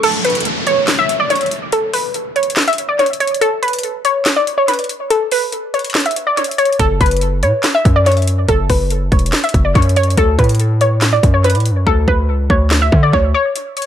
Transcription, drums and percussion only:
0.03 closed hi-hat medium
0.03 crash loud
0.25 closed hi-hat medium
0.30 closed hi-hat medium
0.35 closed hi-hat medium
0.40 closed hi-hat medium
0.45 closed hi-hat medium
0.67 closed hi-hat medium
0.87 snare loud
0.87 clap medium
0.87 closed hi-hat medium
1.09 closed hi-hat medium
1.30 closed hi-hat medium
1.36 closed hi-hat medium
1.41 closed hi-hat medium
1.46 closed hi-hat soft
1.51 closed hi-hat medium
1.72 closed hi-hat medium
1.94 open hi-hat medium
2.14 closed hi-hat medium
2.36 closed hi-hat soft
2.43 closed hi-hat medium
2.50 closed hi-hat medium
2.56 snare loud
2.56 clap medium
2.56 closed hi-hat medium
2.62 closed hi-hat medium
2.68 closed hi-hat medium
2.73 closed hi-hat medium
2.78 closed hi-hat medium
2.99 closed hi-hat soft
3.06 closed hi-hat medium
3.13 closed hi-hat medium
3.20 closed hi-hat medium
3.27 closed hi-hat medium
3.34 closed hi-hat medium
3.41 closed hi-hat medium
3.63 closed hi-hat medium
3.68 closed hi-hat medium
3.73 closed hi-hat medium
3.79 closed hi-hat medium
3.83 closed hi-hat medium
4.05 closed hi-hat medium
4.25 snare loud
4.25 clap loud
4.25 closed hi-hat medium
4.47 closed hi-hat medium
4.68 closed hi-hat medium
4.74 closed hi-hat medium
4.79 closed hi-hat medium
4.84 closed hi-hat soft
4.89 closed hi-hat medium
5.10 closed hi-hat medium
5.32 open hi-hat medium
5.52 closed hi-hat medium
5.74 closed hi-hat soft
5.79 closed hi-hat medium
5.84 closed hi-hat medium
5.90 closed hi-hat medium
5.94 snare loud
5.94 clap medium
5.94 closed hi-hat medium
6.00 closed hi-hat medium
6.06 closed hi-hat medium
6.11 closed hi-hat medium
6.16 closed hi-hat medium
6.37 closed hi-hat medium
6.44 closed hi-hat medium
6.51 closed hi-hat medium
6.58 closed hi-hat medium
6.65 closed hi-hat medium
6.73 closed hi-hat soft
6.79 kick loud
6.79 closed hi-hat medium
7.01 kick loud
7.01 closed hi-hat medium
7.06 closed hi-hat medium
7.11 closed hi-hat medium
7.17 closed hi-hat medium
7.21 closed hi-hat medium
7.43 closed hi-hat medium
7.63 snare loud
7.63 clap medium
7.63 closed hi-hat medium
7.85 kick loud
7.85 closed hi-hat medium
8.06 closed hi-hat medium
8.12 closed hi-hat medium
8.17 closed hi-hat medium
8.22 closed hi-hat soft
8.27 closed hi-hat medium
8.48 kick loud
8.48 closed hi-hat medium
8.70 kick medium
8.70 open hi-hat medium
8.90 closed hi-hat medium
9.12 kick loud
9.12 closed hi-hat soft
9.19 closed hi-hat medium
9.26 closed hi-hat medium
9.32 snare loud
9.32 clap medium
9.32 closed hi-hat medium
9.38 closed hi-hat medium
9.44 closed hi-hat medium
9.49 closed hi-hat medium
9.54 kick loud
9.54 closed hi-hat medium
9.75 kick medium
9.75 closed hi-hat soft
9.82 closed hi-hat medium
9.89 closed hi-hat medium
9.96 closed hi-hat medium
10.03 closed hi-hat medium
10.10 closed hi-hat medium
10.17 kick loud
10.17 closed hi-hat medium
10.39 kick loud
10.39 closed hi-hat medium
10.44 closed hi-hat medium
10.49 closed hi-hat medium
10.55 closed hi-hat medium
10.60 closed hi-hat medium
10.81 closed hi-hat medium
11.01 snare loud
11.01 clap medium
11.01 closed hi-hat medium
11.23 kick loud
11.23 closed hi-hat medium
11.44 closed hi-hat medium
11.50 closed hi-hat medium
11.55 closed hi-hat medium
11.60 closed hi-hat soft
11.66 closed hi-hat medium
11.87 kick loud
12.08 kick loud
12.50 kick loud
12.70 snare loud
12.70 clap medium
12.92 kick loud
13.13 kick medium
13.56 closed hi-hat medium
13.77 closed hi-hat medium
13.82 closed hi-hat medium

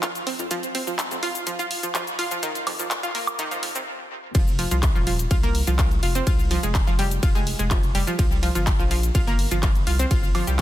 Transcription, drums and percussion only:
0.03 clap loud
0.03 closed hi-hat medium
0.03 cabasa medium
0.15 closed hi-hat soft
0.15 cabasa soft
0.27 open hi-hat medium
0.39 closed hi-hat soft
0.39 cabasa medium
0.51 closed hi-hat loud
0.51 cabasa medium
0.63 closed hi-hat soft
0.63 cabasa soft
0.75 open hi-hat loud
0.87 cabasa medium
0.99 clap loud
0.99 closed hi-hat loud
0.99 cabasa medium
1.11 closed hi-hat soft
1.11 cabasa soft
1.23 open hi-hat medium
1.35 closed hi-hat soft
1.35 cabasa medium
1.47 closed hi-hat loud
1.47 cabasa medium
1.59 closed hi-hat soft
1.59 cabasa soft
1.71 open hi-hat loud
1.83 closed hi-hat soft
1.83 cabasa medium
1.95 clap loud
1.95 closed hi-hat medium
1.95 cabasa medium
2.07 closed hi-hat soft
2.07 cabasa soft
2.19 open hi-hat medium
2.31 closed hi-hat soft
2.31 cabasa medium
2.43 closed hi-hat loud
2.43 cabasa medium
2.55 closed hi-hat soft
2.55 cabasa soft
2.67 open hi-hat loud
2.67 high woodblock medium
2.79 closed hi-hat soft
2.79 cabasa medium
2.91 clap loud
2.91 closed hi-hat loud
2.91 cabasa medium
3.03 closed hi-hat soft
3.03 cabasa soft
3.15 open hi-hat medium
3.27 closed hi-hat soft
3.27 cabasa medium
3.27 high woodblock medium
3.39 closed hi-hat loud
3.39 cabasa medium
3.51 closed hi-hat soft
3.51 cabasa soft
3.63 open hi-hat loud
3.75 closed hi-hat soft
3.75 cabasa medium
4.35 kick loud
4.35 closed hi-hat medium
4.35 ride medium
4.35 cabasa medium
4.47 cabasa soft
4.59 open hi-hat loud
4.71 closed hi-hat medium
4.71 cabasa medium
4.83 kick loud
4.83 clap loud
4.83 closed hi-hat medium
4.83 ride medium
4.83 cabasa medium
4.95 cabasa soft
5.07 open hi-hat medium
5.19 closed hi-hat medium
5.19 cabasa medium
5.31 kick loud
5.31 closed hi-hat medium
5.31 ride medium
5.31 cabasa medium
5.43 closed hi-hat soft
5.43 cabasa soft
5.55 open hi-hat loud
5.67 closed hi-hat medium
5.67 cabasa medium
5.79 kick loud
5.79 clap loud
5.79 closed hi-hat medium
5.79 ride medium
5.79 cabasa medium
5.91 closed hi-hat soft
5.91 cabasa soft
6.03 open hi-hat medium
6.15 closed hi-hat medium
6.15 cabasa medium
6.27 kick loud
6.27 closed hi-hat medium
6.27 ride medium
6.27 cabasa medium
6.39 cabasa soft
6.51 open hi-hat loud
6.63 closed hi-hat medium
6.63 cabasa medium
6.75 kick loud
6.75 clap loud
6.75 closed hi-hat medium
6.75 ride medium
6.75 cabasa medium
6.87 cabasa soft
6.99 open hi-hat loud
7.11 closed hi-hat medium
7.11 cabasa medium
7.23 kick loud
7.23 closed hi-hat medium
7.23 ride medium
7.23 cabasa medium
7.35 closed hi-hat soft
7.35 cabasa soft
7.47 open hi-hat loud
7.59 closed hi-hat medium
7.59 cabasa medium
7.71 kick loud
7.71 clap loud
7.71 closed hi-hat medium
7.71 ride medium
7.71 cabasa medium
7.83 closed hi-hat soft
7.83 cabasa soft
7.95 open hi-hat loud
8.07 closed hi-hat medium
8.07 cabasa medium
8.19 kick loud
8.19 closed hi-hat medium
8.19 ride medium
8.19 cabasa medium
8.31 cabasa soft
8.43 open hi-hat loud
8.55 closed hi-hat medium
8.55 cabasa medium
8.67 kick loud
8.67 clap loud
8.67 closed hi-hat medium
8.67 ride medium
8.67 cabasa medium
8.79 cabasa soft
8.91 open hi-hat loud
9.03 closed hi-hat medium
9.03 cabasa medium
9.15 kick loud
9.15 closed hi-hat medium
9.15 ride medium
9.15 cabasa medium
9.27 closed hi-hat soft
9.27 cabasa soft
9.39 open hi-hat loud
9.51 closed hi-hat medium
9.51 cabasa medium
9.63 kick loud
9.63 clap loud
9.63 closed hi-hat medium
9.63 ride medium
9.63 cabasa medium
9.75 closed hi-hat soft
9.75 cabasa soft
9.87 open hi-hat loud
9.99 closed hi-hat medium
9.99 cabasa medium
10.11 kick loud
10.11 closed hi-hat medium
10.11 ride medium
10.11 cabasa medium
10.23 cabasa soft
10.35 open hi-hat loud
10.35 high woodblock medium
10.47 closed hi-hat soft
10.47 cabasa medium

